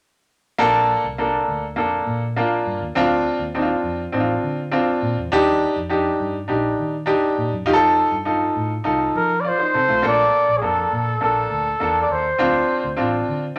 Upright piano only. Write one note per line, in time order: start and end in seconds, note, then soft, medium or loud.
0.58 1.04 A#3 loud
0.58 1.04 D4 medium
0.58 1.04 A4 loud
1.18 1.63 A#3 medium
1.18 1.64 D4 medium
1.18 1.64 A4 medium
1.76 2.22 A#3 medium
1.76 2.22 D4 medium
1.76 2.23 A4 medium
2.36 2.81 A#3 medium
2.36 2.82 D4 medium
2.36 2.82 F4 medium
2.95 3.40 C4 medium
2.95 3.41 D4 loud
2.95 3.41 F4 loud
3.55 3.99 C4 medium
3.55 4.00 D4 medium
3.55 3.62 D#4 medium
3.62 4.03 F4 medium
4.12 4.58 C4 medium
4.12 4.58 D4 medium
4.12 4.20 D#4 medium
4.20 4.62 F4 medium
4.71 5.17 C4 medium
4.71 5.17 D4 medium
4.71 5.17 F4 loud
5.32 5.76 D4 loud
5.32 5.77 D#4 loud
5.32 5.77 G4 loud
5.89 6.35 D4 medium
5.89 6.35 D#4 medium
5.89 6.35 G4 medium
6.48 6.93 D4 medium
6.48 6.94 D#4 medium
6.48 6.94 G4 medium
7.06 7.52 D4 medium
7.06 7.52 D#4 medium
7.06 7.52 G4 medium
7.66 8.11 D#4 loud
7.66 8.12 F4 medium
7.66 7.74 G4 loud
7.73 8.15 A4 loud
8.25 8.71 D#4 medium
8.25 8.71 F4 medium
8.25 8.71 A4 medium
8.84 9.29 D#4 medium
8.84 9.30 F4 medium
8.84 9.30 A4 medium
9.44 9.59 F4 medium
9.44 9.58 D5 medium
9.59 9.73 D#4 soft
9.59 9.73 C5 medium
9.74 9.88 C4 soft
9.74 9.88 A4 medium
9.89 10.16 A3 soft
9.89 10.17 F4 medium
10.02 10.47 A#3 medium
10.02 10.48 D4 medium
10.02 10.48 A4 loud
10.62 11.07 A#3 medium
10.62 11.07 D4 medium
10.62 11.07 A4 medium
11.21 11.66 A#3 medium
11.21 11.66 D4 medium
11.21 11.66 A4 medium
11.80 12.25 A#3 medium
11.80 12.25 D4 medium
11.80 12.25 A4 medium
12.38 12.83 C4 medium
12.38 12.84 D4 medium
12.38 12.84 F4 loud
12.97 13.42 C4 medium
12.97 13.42 D4 medium
12.97 13.42 F4 medium